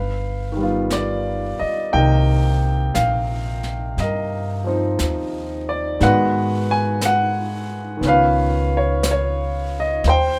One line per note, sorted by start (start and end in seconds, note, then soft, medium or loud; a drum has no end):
0.00 1.56 G1 medium
0.00 1.57 B4 soft
0.00 1.58 F5 medium
0.52 1.91 D#3 soft
0.56 1.93 G3 soft
0.56 1.94 B3 soft
0.63 1.96 F4 soft
0.90 1.63 D5 medium
0.90 brush sweep soft
0.90 snare soft
0.90 hi-hat pedal soft
1.59 1.94 D#5 medium
1.59 muted upright bass stroke soft
1.92 2.92 C2 medium
1.92 6.00 C3 soft
1.92 5.98 D#3 soft
1.92 6.01 A#3 soft
1.92 3.95 D#5 medium
1.92 2.91 G5 medium
1.92 brush sweep soft
2.95 3.94 A#1 medium
2.95 3.93 F5 medium
2.95 brush sweep soft
2.95 snare soft
2.95 hi-hat pedal soft
3.63 snare soft
3.97 4.95 G2 medium
3.97 4.96 D#5 medium
3.97 brush sweep soft
3.97 snare soft
4.02 5.99 A#4 soft
4.64 6.00 F3 soft
4.64 6.01 C4 soft
4.64 6.02 D#4 soft
4.99 5.97 D#2 medium
4.99 brush sweep soft
4.99 snare soft
4.99 hi-hat pedal soft
5.69 6.02 D5 medium
5.99 7.99 G#2 medium
5.99 7.95 D#3 soft
5.99 8.03 G#3 soft
5.99 7.99 B3 soft
5.99 8.00 B4 medium
5.99 6.71 F#5 medium
5.99 brush sweep soft
5.99 snare soft
6.04 8.04 F#4 soft
6.71 7.04 G#5 medium
7.01 brush sweep soft
7.01 snare soft
7.01 hi-hat pedal medium
7.05 8.07 F#5 medium
7.97 10.01 D#3 soft
7.97 10.03 B3 soft
8.01 10.00 C#2 medium
8.01 10.05 C#4 soft
8.01 brush sweep soft
8.01 snare soft
8.07 10.07 F4 soft
8.07 10.02 B4 medium
8.07 8.69 F5 medium
8.77 9.08 C#5 medium
9.03 brush sweep soft
9.03 snare soft
9.03 hi-hat pedal medium
9.11 9.77 C#5 medium
9.80 10.09 D#5 medium
10.04 10.39 D#2 medium
10.04 10.39 C5 medium
10.04 brush sweep soft
10.04 snare soft
10.09 10.39 G5 medium